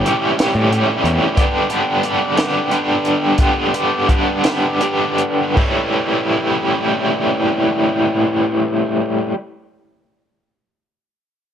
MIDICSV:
0, 0, Header, 1, 4, 480
1, 0, Start_track
1, 0, Tempo, 659341
1, 996, Time_signature, 6, 3, 24, 8
1, 1962, Tempo, 704225
1, 3402, Tempo, 773196
1, 7580, End_track
2, 0, Start_track
2, 0, Title_t, "Overdriven electric guitar"
2, 0, Program_c, 0, 29
2, 40, Note_on_c, 0, 45, 77
2, 43, Note_on_c, 0, 52, 87
2, 46, Note_on_c, 0, 55, 88
2, 51, Note_on_c, 0, 61, 86
2, 52, Note_on_c, 0, 67, 84
2, 272, Note_off_c, 0, 45, 0
2, 274, Note_off_c, 0, 52, 0
2, 280, Note_off_c, 0, 61, 0
2, 281, Note_on_c, 0, 45, 75
2, 283, Note_on_c, 0, 52, 81
2, 285, Note_off_c, 0, 55, 0
2, 285, Note_off_c, 0, 67, 0
2, 288, Note_on_c, 0, 55, 91
2, 288, Note_on_c, 0, 67, 98
2, 289, Note_on_c, 0, 61, 95
2, 511, Note_off_c, 0, 45, 0
2, 512, Note_off_c, 0, 52, 0
2, 518, Note_off_c, 0, 61, 0
2, 520, Note_on_c, 0, 45, 70
2, 521, Note_on_c, 0, 52, 72
2, 522, Note_off_c, 0, 55, 0
2, 525, Note_on_c, 0, 55, 70
2, 527, Note_on_c, 0, 61, 78
2, 529, Note_off_c, 0, 67, 0
2, 532, Note_on_c, 0, 67, 89
2, 983, Note_off_c, 0, 45, 0
2, 983, Note_off_c, 0, 52, 0
2, 986, Note_off_c, 0, 61, 0
2, 994, Note_on_c, 0, 43, 76
2, 998, Note_on_c, 0, 50, 83
2, 1000, Note_off_c, 0, 55, 0
2, 1000, Note_on_c, 0, 55, 80
2, 1004, Note_off_c, 0, 67, 0
2, 1004, Note_on_c, 0, 59, 87
2, 1007, Note_on_c, 0, 62, 83
2, 1007, Note_on_c, 0, 67, 91
2, 1231, Note_off_c, 0, 50, 0
2, 1236, Note_off_c, 0, 43, 0
2, 1239, Note_off_c, 0, 55, 0
2, 1239, Note_on_c, 0, 43, 70
2, 1240, Note_on_c, 0, 50, 71
2, 1242, Note_off_c, 0, 59, 0
2, 1242, Note_on_c, 0, 55, 64
2, 1245, Note_on_c, 0, 59, 63
2, 1247, Note_off_c, 0, 62, 0
2, 1247, Note_off_c, 0, 67, 0
2, 1250, Note_on_c, 0, 62, 74
2, 1250, Note_on_c, 0, 67, 70
2, 1479, Note_off_c, 0, 50, 0
2, 1481, Note_off_c, 0, 43, 0
2, 1483, Note_on_c, 0, 43, 85
2, 1487, Note_on_c, 0, 50, 83
2, 1491, Note_off_c, 0, 55, 0
2, 1493, Note_off_c, 0, 59, 0
2, 1493, Note_off_c, 0, 62, 0
2, 1494, Note_off_c, 0, 67, 0
2, 1494, Note_on_c, 0, 55, 91
2, 1496, Note_on_c, 0, 59, 82
2, 1496, Note_on_c, 0, 62, 90
2, 1497, Note_on_c, 0, 67, 91
2, 1715, Note_off_c, 0, 50, 0
2, 1716, Note_off_c, 0, 43, 0
2, 1719, Note_off_c, 0, 59, 0
2, 1722, Note_off_c, 0, 62, 0
2, 1724, Note_on_c, 0, 50, 92
2, 1725, Note_on_c, 0, 43, 75
2, 1726, Note_off_c, 0, 55, 0
2, 1728, Note_on_c, 0, 59, 86
2, 1729, Note_on_c, 0, 55, 81
2, 1731, Note_on_c, 0, 62, 86
2, 1732, Note_off_c, 0, 67, 0
2, 1735, Note_on_c, 0, 67, 86
2, 1961, Note_off_c, 0, 43, 0
2, 1965, Note_off_c, 0, 50, 0
2, 1966, Note_off_c, 0, 59, 0
2, 1969, Note_on_c, 0, 43, 75
2, 1972, Note_off_c, 0, 62, 0
2, 1973, Note_on_c, 0, 50, 76
2, 1974, Note_on_c, 0, 59, 67
2, 1976, Note_off_c, 0, 55, 0
2, 1978, Note_on_c, 0, 55, 81
2, 1979, Note_off_c, 0, 67, 0
2, 1980, Note_on_c, 0, 62, 77
2, 1981, Note_on_c, 0, 67, 77
2, 2430, Note_off_c, 0, 43, 0
2, 2430, Note_off_c, 0, 50, 0
2, 2433, Note_off_c, 0, 55, 0
2, 2435, Note_off_c, 0, 59, 0
2, 2438, Note_on_c, 0, 43, 88
2, 2438, Note_on_c, 0, 50, 74
2, 2440, Note_off_c, 0, 67, 0
2, 2441, Note_off_c, 0, 62, 0
2, 2441, Note_on_c, 0, 55, 80
2, 2443, Note_on_c, 0, 59, 85
2, 2448, Note_on_c, 0, 67, 80
2, 2449, Note_on_c, 0, 62, 87
2, 2667, Note_off_c, 0, 43, 0
2, 2668, Note_off_c, 0, 55, 0
2, 2670, Note_off_c, 0, 50, 0
2, 2673, Note_off_c, 0, 59, 0
2, 2675, Note_off_c, 0, 67, 0
2, 2675, Note_on_c, 0, 43, 71
2, 2677, Note_off_c, 0, 62, 0
2, 2677, Note_on_c, 0, 55, 69
2, 2678, Note_on_c, 0, 50, 61
2, 2681, Note_on_c, 0, 59, 63
2, 2683, Note_on_c, 0, 67, 78
2, 2685, Note_on_c, 0, 62, 68
2, 2903, Note_off_c, 0, 43, 0
2, 2905, Note_off_c, 0, 50, 0
2, 2907, Note_off_c, 0, 55, 0
2, 2909, Note_off_c, 0, 59, 0
2, 2911, Note_on_c, 0, 43, 75
2, 2912, Note_off_c, 0, 62, 0
2, 2913, Note_on_c, 0, 50, 79
2, 2914, Note_off_c, 0, 67, 0
2, 2915, Note_on_c, 0, 55, 82
2, 2918, Note_on_c, 0, 59, 76
2, 2920, Note_on_c, 0, 62, 80
2, 2922, Note_on_c, 0, 67, 82
2, 3147, Note_off_c, 0, 43, 0
2, 3153, Note_off_c, 0, 50, 0
2, 3155, Note_on_c, 0, 43, 78
2, 3156, Note_off_c, 0, 55, 0
2, 3156, Note_off_c, 0, 59, 0
2, 3160, Note_off_c, 0, 62, 0
2, 3162, Note_off_c, 0, 67, 0
2, 3162, Note_on_c, 0, 50, 75
2, 3164, Note_on_c, 0, 59, 77
2, 3165, Note_on_c, 0, 55, 75
2, 3168, Note_on_c, 0, 62, 78
2, 3170, Note_on_c, 0, 67, 75
2, 3399, Note_off_c, 0, 43, 0
2, 3401, Note_off_c, 0, 50, 0
2, 3405, Note_off_c, 0, 55, 0
2, 3406, Note_off_c, 0, 59, 0
2, 3406, Note_on_c, 0, 43, 74
2, 3409, Note_on_c, 0, 50, 65
2, 3410, Note_off_c, 0, 62, 0
2, 3412, Note_on_c, 0, 55, 71
2, 3413, Note_off_c, 0, 67, 0
2, 3413, Note_on_c, 0, 59, 66
2, 3418, Note_on_c, 0, 62, 77
2, 3421, Note_on_c, 0, 67, 74
2, 3860, Note_off_c, 0, 43, 0
2, 3862, Note_off_c, 0, 50, 0
2, 3863, Note_off_c, 0, 55, 0
2, 3864, Note_off_c, 0, 59, 0
2, 3866, Note_off_c, 0, 62, 0
2, 3866, Note_on_c, 0, 45, 83
2, 3868, Note_off_c, 0, 67, 0
2, 3873, Note_on_c, 0, 52, 69
2, 3881, Note_on_c, 0, 55, 87
2, 3886, Note_on_c, 0, 61, 79
2, 3890, Note_on_c, 0, 64, 78
2, 6208, Note_off_c, 0, 45, 0
2, 6215, Note_off_c, 0, 52, 0
2, 6223, Note_off_c, 0, 55, 0
2, 6227, Note_off_c, 0, 61, 0
2, 6231, Note_off_c, 0, 64, 0
2, 7580, End_track
3, 0, Start_track
3, 0, Title_t, "Picked electric bass"
3, 0, Program_c, 1, 34
3, 400, Note_on_c, 1, 45, 81
3, 602, Note_off_c, 1, 45, 0
3, 757, Note_on_c, 1, 40, 66
3, 858, Note_off_c, 1, 40, 0
3, 7580, End_track
4, 0, Start_track
4, 0, Title_t, "Drums"
4, 42, Note_on_c, 9, 42, 56
4, 115, Note_off_c, 9, 42, 0
4, 284, Note_on_c, 9, 42, 76
4, 292, Note_on_c, 9, 38, 92
4, 357, Note_off_c, 9, 42, 0
4, 365, Note_off_c, 9, 38, 0
4, 528, Note_on_c, 9, 42, 56
4, 601, Note_off_c, 9, 42, 0
4, 767, Note_on_c, 9, 42, 44
4, 840, Note_off_c, 9, 42, 0
4, 1000, Note_on_c, 9, 42, 61
4, 1001, Note_on_c, 9, 36, 90
4, 1073, Note_off_c, 9, 42, 0
4, 1074, Note_off_c, 9, 36, 0
4, 1238, Note_on_c, 9, 42, 53
4, 1311, Note_off_c, 9, 42, 0
4, 1481, Note_on_c, 9, 42, 51
4, 1554, Note_off_c, 9, 42, 0
4, 1727, Note_on_c, 9, 42, 71
4, 1735, Note_on_c, 9, 38, 99
4, 1800, Note_off_c, 9, 42, 0
4, 1808, Note_off_c, 9, 38, 0
4, 1973, Note_on_c, 9, 42, 55
4, 2042, Note_off_c, 9, 42, 0
4, 2203, Note_on_c, 9, 42, 50
4, 2271, Note_off_c, 9, 42, 0
4, 2429, Note_on_c, 9, 42, 74
4, 2434, Note_on_c, 9, 36, 89
4, 2497, Note_off_c, 9, 42, 0
4, 2502, Note_off_c, 9, 36, 0
4, 2676, Note_on_c, 9, 42, 64
4, 2745, Note_off_c, 9, 42, 0
4, 2913, Note_on_c, 9, 36, 72
4, 2914, Note_on_c, 9, 42, 54
4, 2981, Note_off_c, 9, 36, 0
4, 2982, Note_off_c, 9, 42, 0
4, 3150, Note_on_c, 9, 42, 84
4, 3158, Note_on_c, 9, 38, 96
4, 3218, Note_off_c, 9, 42, 0
4, 3226, Note_off_c, 9, 38, 0
4, 3402, Note_on_c, 9, 42, 59
4, 3464, Note_off_c, 9, 42, 0
4, 3636, Note_on_c, 9, 42, 52
4, 3698, Note_off_c, 9, 42, 0
4, 3875, Note_on_c, 9, 36, 92
4, 3875, Note_on_c, 9, 49, 77
4, 3937, Note_off_c, 9, 36, 0
4, 3937, Note_off_c, 9, 49, 0
4, 7580, End_track
0, 0, End_of_file